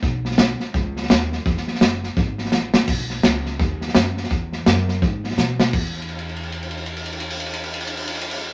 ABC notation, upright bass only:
X:1
M:4/4
L:1/8
Q:"Swing" 1/4=168
K:E
V:1 name="Upright bass" clef=bass
B,,,4 C,,2 D,,2 | E,,2 F,,,2 G,,,2 A,,,2 | B,,,2 C,,2 D,,2 F,,2 | E,,2 F,,2 G,,2 B,,2 |
E,,8- | E,,8 |]